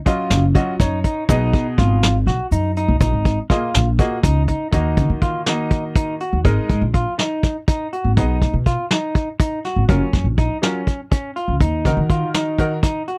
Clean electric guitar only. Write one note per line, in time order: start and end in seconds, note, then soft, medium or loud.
0.07 0.44 F4 medium
0.55 0.74 F#4 medium
0.80 0.98 D#4 medium
1.04 1.23 D#4 medium
1.29 1.66 D#4 medium
1.78 2.15 F4 medium
2.27 2.46 F#4 medium
2.52 2.71 D#4 medium
2.77 2.95 D#4 medium
3.01 3.38 D#4 medium
3.50 3.87 F4 medium
3.99 4.18 F#4 medium
4.23 4.42 D#4 medium
4.48 4.67 D#4 medium
4.72 5.10 D#4 medium
5.22 5.40 F4 medium
5.47 5.84 D#4 medium
5.96 6.14 D#4 medium
6.21 6.39 F#4 medium
6.45 6.82 D#4 medium
6.94 7.13 F4 medium
7.19 7.56 D#4 medium
7.68 7.87 D#4 medium
7.93 8.11 F#4 medium
8.17 8.54 D#4 medium
8.66 8.85 F4 medium
8.91 9.28 D#4 medium
9.40 9.59 D#4 medium
9.65 9.83 F#4 medium
9.89 10.26 C#4 medium
10.38 10.57 D#4 medium
10.63 11.00 C#4 medium
11.12 11.30 C#4 medium
11.36 11.55 F4 medium
11.61 11.98 D#4 medium
12.10 12.28 F4 medium
12.35 12.72 D#4 medium
12.83 13.02 D#4 medium
13.08 13.18 F#4 medium